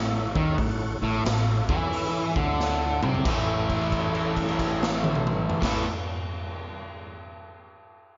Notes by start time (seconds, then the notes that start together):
Already playing: A1 A2 E4 A4 C#5 E5
0.32 D#2 C#4 A4 C#5 E5, kick
0.36 D#3
0.55 A1 A2 E4 A4 C#5 F#5, kick
0.59 open hi-hat
1.01 A1 A2 E4 A4 C#5 E5
1.21 A2 E4 A4 C#5 E5, open hi-hat
1.26 A1, snare
1.69 E2 E3 E4 A4 C#5 E5, kick
1.90 E4 A4 C#5 E5, open hi-hat
2.34 D2 D3 E4 A4 C#5 E5, kick
2.59 E4 A4 C#5 E5, snare
3.02 C2 C3 E4 A4 C#5 G5, mid tom
3.14 floor tom
3.25 A1 A2 E3 E4 A4 C#5 E5, kick, crash
3.30 A3
3.70 kick, crash
3.81 crash
3.92 kick, crash
4.15 crash
4.37 kick, crash
4.48 crash
4.59 kick, crash
4.83 snare
5.04 high tom
5.15 mid tom
5.27 mid tom
5.50 floor tom
5.60 A1 A2 E3 E4 A4 C#5 E5, kick, crash
5.64 A3, snare